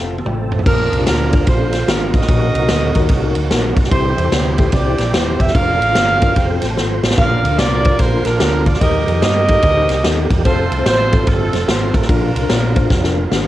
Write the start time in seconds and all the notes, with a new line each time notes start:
Already playing: F1 F3 A3 C4 F4 A4
0.00 A4 F5
0.18 high tom
0.25 A1 C4 F4 A4 G5, mid tom
0.52 floor tom
0.59 floor tom
0.66 A#1 A#2 D3 F3 A#3 D4 F4 A#4, kick, crash
0.92 C2, ride
0.99 D4 F4 G4
1.07 D2 A#4, snare, ride
1.33 D4 F4 A#4, kick, ride
1.47 A#1 F4 C5, kick, ride
1.60 D4 F4 A4
1.73 snare, ride
1.88 G#1 D4 F4 A#4, snare, ride
2.14 A1 F#4 A#4 D#5, kick, ride
2.21 snare
2.28 A#1 A#2 D#3 F#3 D#4 F#4 A#4, kick, ride
2.55 C2, ride
2.62 D#4 F#4 A#4
2.69 D2, snare, ride
2.95 D#2 D#4 F#4 A#4, kick, ride
3.09 C2, kick, ride
3.22 D#4 F#4 A#4
3.35 D2, ride
3.50 A#1 D#4 F#4 A#4, snare, ride
3.76 B1, kick, ride
3.84 snare
3.91 C2 C3 E3 G3 C4 E4 G4 C5, kick, ride
4.18 E2, ride
4.24 E4 G4 A4
4.32 D2 C5, snare, ride
4.58 E4 G4 A4 C5, kick, ride
4.72 C2 G4 D5, kick, ride
4.86 E4 G4 C5
4.98 A#1, snare, ride
5.13 D#1 E4 G4 C5, snare, ride
5.40 E1 E5, kick, ride
5.48 snare
5.54 F1 D3 F3 A#3 D4 F4 A#4 D5 F5, kick, ride
5.80 A1, ride
5.88 D4 F4 A4
5.95 G1, snare, ride
6.22 D4 F4 A#4 D5, kick, ride
6.29 F5
6.36 F1 C4 C5 G5, kick, ride
6.49 C4 F4 A4
6.62 A1, snare, ride
6.70 A5
6.77 G#1 C4 F4 A4 C6, snare
7.03 A1, snare
7.10 snare
7.18 A#1 A#2 D3 A#3 D4 F4 A#4 D5 F5, kick, splash
7.44 D2, ride
7.51 D4 F4 A#4
7.58 C2 F4 A#4 D5, snare, ride
7.85 D4 F4 C5, kick, ride
7.99 A#1 F4 C5, kick, ride
8.12 D4 F4 A#4
8.25 A#1 D4 F4 A#4, snare, ride
8.40 D2 D4 F4 A4, snare, ride
8.66 D5, kick, ride
8.74 snare
8.81 D#2 D#3 G3 D#4 G4 A#4 D#5, kick, ride
9.07 F2, ride
9.15 D#4 G4 A#4
9.22 G2 G4 A#4 D#5, snare, ride
9.48 D#4 G4 A4, kick, ride
9.62 D2, kick, ride
9.76 D#4 G4 C5
9.89 C2, snare, ride
10.04 D#2 D#4 G4 A4, snare, ride
10.30 E2, kick, ride
10.45 F1 F3 A3 C4 F4 A4 C5, kick, ride
10.71 C2, ride
10.79 C4 F4 C5
10.86 A1 F4 A4 C5, snare, ride
11.13 C4 F4 A4, kick, ride
11.27 G1 C4 F4 A4, kick, ride
11.40 C4 F4 A4
11.53 F1, snare, ride
11.68 G#1 C4 F4 C5, snare, ride
11.94 A1 D4 F4 A#4, kick, ride
12.02 snare
12.09 A#1 A#2 D3 A#3 D4 F4 A#4, kick, ride
12.35 C2, ride
12.42 D4 F4 A#4
12.50 A#1, snare, ride
12.75 D4 F4 C5, kick, ride
12.90 F1, kick, snare
13.04 D4 F4 A#4, snare
13.31 G#1 D4 F4 G4, snare